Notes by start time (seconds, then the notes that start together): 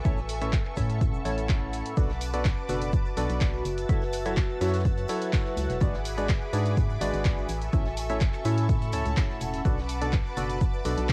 Already playing: F#4 A4 B4 E5 G#5 C#6
0.05 A1 A2 C#4 E4 A4 C#5 E5, kick, closed hi-hat, shaker
0.15 F#5, snare, shaker
0.29 open hi-hat, shaker
0.33 C#4
0.42 A2 C#4 E4 A4 C#5 E5, closed hi-hat, shaker
0.53 kick, snare, clap, closed hi-hat, shaker
0.65 clap
0.76 A2 C#4 E4 A4 C#5 E5 B5, kick, open hi-hat, shaker
0.90 closed hi-hat, shaker
1.01 kick, closed hi-hat, shaker
1.14 E1, shaker
1.25 A1 A2 C#4 E4 A4 C#5 A5, open hi-hat, shaker
1.38 closed hi-hat, shaker
1.49 kick, snare, clap, closed hi-hat, shaker
1.73 open hi-hat, shaker
1.86 closed hi-hat, shaker
1.97 B1 B2 D4 F#4 A4 B4 D5 A5 D6, kick, closed hi-hat, tambourine, shaker
2.09 snare, tambourine
2.21 open hi-hat, tambourine, shaker
2.33 B2 D4 F#4 A4 B4 D5, closed hi-hat, tambourine, shaker
2.45 kick, snare, clap, closed hi-hat, tambourine, shaker
2.50 B4
2.58 tambourine
2.66 F#1 B2 D4 F#4 A4 B4 D5 E5, open hi-hat, tambourine, shaker
2.73 A5
2.82 closed hi-hat, tambourine, shaker
2.93 kick, closed hi-hat, tambourine, shaker
3.05 tambourine, shaker
3.17 B1 B2 D4 F#4 A4 B4 D5, open hi-hat, tambourine, shaker
3.29 B1, closed hi-hat, tambourine, shaker
3.41 kick, snare, clap, closed hi-hat, tambourine, shaker
3.53 tambourine
3.65 F#1 F#5 E6 A6, open hi-hat, tambourine, shaker
3.78 closed hi-hat, tambourine, shaker
3.89 F#1 F#3 E4 F#4 A4 C#5 E5, kick, closed hi-hat, tambourine, shaker
4.02 snare, tambourine
4.13 open hi-hat, tambourine, shaker
4.25 F#3 E4 F#4 A4 C#5 E5, closed hi-hat, tambourine, shaker
4.37 kick, snare, clap, closed hi-hat, tambourine, shaker
4.50 tambourine
4.61 F#2 F#3 E4 F#4 A4 C#5 E5, snare, open hi-hat, tambourine, shaker
4.67 snare, shaker
4.73 snare, closed hi-hat, tambourine, shaker
4.79 snare, shaker
4.85 kick, closed hi-hat, tambourine, shaker
4.97 closed hi-hat, tambourine, shaker
5.08 F#3 E4 F#4 A4 C#5 E5, open hi-hat, tambourine, shaker
5.21 closed hi-hat, tambourine, shaker
5.33 kick, snare, clap, closed hi-hat, tambourine, shaker
5.45 snare, tambourine
5.57 C#2, open hi-hat, tambourine, shaker
5.69 E1, snare, closed hi-hat, tambourine, shaker
5.80 G#1 G#3 D4 F#4 G#4 B4 D5 B5 D6, kick, closed hi-hat, tambourine, shaker
5.94 snare, tambourine
6.05 open hi-hat, tambourine, shaker
6.18 G#3 D4 F#4 G#4 B4 D5, closed hi-hat, tambourine, shaker
6.29 kick, snare, clap, closed hi-hat, tambourine, shaker
6.42 tambourine
6.53 G#2 G#3 D4 F#4 G#4 B4 D5, open hi-hat, tambourine, shaker
6.57 G#5
6.65 closed hi-hat, tambourine, shaker
6.77 kick, closed hi-hat, tambourine, shaker
6.90 tambourine, shaker
7.01 G#1 G#3 D4 F#4 G#4 B4 D5, open hi-hat, tambourine, shaker
7.13 G#1, closed hi-hat, tambourine, shaker
7.24 kick, snare, clap, closed hi-hat, tambourine, shaker
7.38 tambourine
7.49 A1 A4 E5 C#6, open hi-hat, tambourine, shaker
7.62 closed hi-hat, tambourine, shaker
7.73 A1 A2 C#4 E4 A4 C#5 E5, kick, closed hi-hat, tambourine, shaker
7.85 snare, tambourine
7.91 B5
7.97 open hi-hat, tambourine, shaker
8.06 A2 C#4 E4 A4 C#5 E5, closed hi-hat, shaker
8.21 kick, snare, clap, closed hi-hat, tambourine, shaker
8.33 clap, tambourine, shaker
8.44 A2 C#4 E4 A4 C#5 E5 F#5, snare, open hi-hat, tambourine, shaker
8.58 closed hi-hat, tambourine, shaker
8.69 kick, closed hi-hat, tambourine, shaker
8.82 closed hi-hat, tambourine, shaker
8.92 C#2 A2 C#4 E4 A4 C#5 A5, open hi-hat, tambourine, shaker
9.05 C#2, closed hi-hat, tambourine, shaker
9.17 kick, snare, clap, closed hi-hat, tambourine, shaker
9.30 snare, tambourine
9.40 E1, open hi-hat, tambourine, shaker
9.54 snare, closed hi-hat, tambourine, shaker
9.65 B1 B2 D4 F#4 A4 B4 D5 A5 D6, kick, closed hi-hat, tambourine, shaker
9.78 snare, tambourine
9.89 open hi-hat, tambourine, shaker
9.99 B2 D4 F#4 A4 B4 D5, closed hi-hat, tambourine, shaker
10.13 kick, snare, clap, closed hi-hat, tambourine, shaker
10.26 E5, tambourine
10.33 A5
10.37 F#1 B2 D4 F#4 A4 B4 D5, open hi-hat, tambourine, shaker
10.50 closed hi-hat, tambourine, shaker
10.61 kick, closed hi-hat, tambourine, shaker
10.73 tambourine, shaker
10.84 B1 B2 D4 F#4 A4 B4 D5, open hi-hat, tambourine, shaker
10.97 B1, closed hi-hat, tambourine, shaker
11.09 kick, snare, clap, closed hi-hat, tambourine, shaker